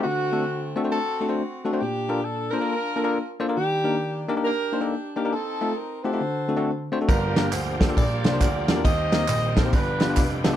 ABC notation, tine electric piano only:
X:1
M:4/4
L:1/16
Q:"Swing" 1/4=136
K:Dphr
V:1 name="Tine electric piano"
z2 [A,CD^FA] z3 [A,CDFA] [A,CDFc] z2 [A,CDFA] [A,CDFc] z2 [A,CDFA] [A,CDFc] | z2 [B,DFAB] z3 [B,DFAc] [B,DFAB] z2 [B,DFAB] [B,DFAB] z2 [B,DFAc] [B,DFAB] | z2 [B,DEGB] z3 [B,DEGB] [B,DEGB] z2 [B,DEGc] [B,DEGA] z2 [B,DEGB] [B,DEGB] | z2 [A,CEFA] z3 [A,CEFG] [A,CEFG] z2 [A,CD^FA] [A,CDFA] z2 [A,CDFc] [A,CDFA] |
z2 [B,DFGB] z3 [B,DFGA] [B,DFGA] z2 [B,DFGc] [B,DFGc] z2 [B,DFGA] [B,DFGB] | z2 [B,CEGB] z3 [B,CEGA] [B,CEGc] z2 [=B,DFG=B] [B,DFGB] z2 [B,DFGA] [B,DFGd] |]
V:2 name="Tine electric piano" clef=bass
D,6 z8 z2 | B,,6 z8 z2 | E,6 z8 z2 | z8 D,6 z2 |
G,,6 z8 z2 | E,6 z2 G,,6 z2 |]